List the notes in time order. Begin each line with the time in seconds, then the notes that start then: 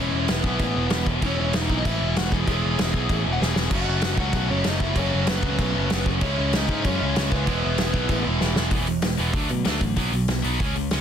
Already playing: E1 E2 E3
0.00 B2 E3 G#3 B3 C#4 E4 C#5
0.12 E1
0.28 E1 B3 B4, snare, crash
0.44 B1 E2 B2 E3 B3 B4, kick
0.59 A1, kick, crash
0.76 E1
0.90 E1, snare, crash
1.06 E1, kick
1.21 E1 E2 B2 E3 G#3 B3 C#4 E4, kick, crash
1.26 C#5
1.40 E1 C#4 C#5
1.53 E1 D#4 D#5, snare, crash
1.69 B1 B2 E3, kick
1.73 E2
1.78 D#5
1.85 A1 E4 E5, kick, crash
2.02 E1
2.16 E1 F#4 F#5, snare, crash
2.31 E1 G#4 G#5, kick
2.47 E1 E2 B2 E3 G#3 B3, kick, crash
2.51 E3 E4
2.64 E1
2.79 E1, snare, crash
2.94 B1 B2 E3, kick
2.98 E2
3.09 A1, kick, crash
3.26 E1
3.33 F#5
3.41 E1 G#4 G#5, snare
3.56 E1, snare
3.71 F#1 F#2 C#3 F#3 A3 C#4 F#4 F#5, kick, crash
3.75 F#3
3.87 F#1
4.02 snare, crash
4.17 C#2 C#3 F#3 F#4 F#5, kick
4.22 F#2
4.33 B1, kick, crash
4.48 F#1 F#2 C#3 F#3 A3 C#4 C#5
4.64 F#2 C#3 F#3 A3 C#4 D#4, snare, crash
4.68 D#5
4.80 F#1 E4 E5, kick
4.95 F#1 F#2 C#3 F#3 A3 C#4 F#4 C#5, kick, crash
4.99 F#3 C#4
5.14 F#1
5.27 F#1 B3 B4, snare, crash
5.42 C#2 C#3 F#3, kick
5.46 F#2
5.59 B1 B3 B4, kick, crash
5.73 F#1 F#2 C#3 F#3 A3 C#4
5.90 F#1 F#2 C#3 F#3 A3 C#4, snare, crash
6.06 F#1, kick
6.20 C#2 C#3 G#3 C#4 E4 C#5, kick, crash
6.24 C#4 E4
6.39 C#2
6.53 C#2 D#4 D#5, snare, crash
6.68 G#2 G#3 C#4, kick
6.72 C#3
6.85 F#2 C#4 C#5, kick, crash
6.99 C#2 C#3 G#3 C#4 E4
7.14 C#2 C#3 G#3 C#4 E4, snare, crash
7.31 C#2 B3 B4, kick
7.45 E1 E2 B2 E3 G#3 B3 E4, kick, crash
7.50 E3
7.64 E1
7.78 E1, snare, crash
7.92 B1 E2 B2 E3, kick
8.09 A1, kick, crash
8.25 E1 E3 G#3 B3 E4
8.40 E1 E3 G#3 B3 E4, snare
8.56 E1, snare
8.71 E1 E2 B2 E3 G#3 B3, kick, open hi-hat
8.86 E2 B2 E3 G#3, open hi-hat
9.02 E1 E2 B2 E3 G#3, snare, open hi-hat
9.17 E1 E2 B2 E3 G#3 B3, open hi-hat
9.33 D2 D3 F#3 A3 D4, kick, open hi-hat
9.49 B2 D3 F#3 A3, open hi-hat
9.65 D2 D3 F#3 A3 D4, snare, open hi-hat
9.69 A3
9.80 A1 D3 F#3 A3, kick, open hi-hat
9.96 B1 B2 F#3 B3, kick, open hi-hat
10.12 B1 B2 F#3, open hi-hat
10.28 B1 B2 F#3, snare, open hi-hat
10.42 B1 B2 F#3 B3, open hi-hat
10.59 C#2 C#3 G#3 C#4, kick, open hi-hat
10.75 C#2 C#3 G#3, open hi-hat
10.91 C#2 C#3 G#3 C#4, snare, open hi-hat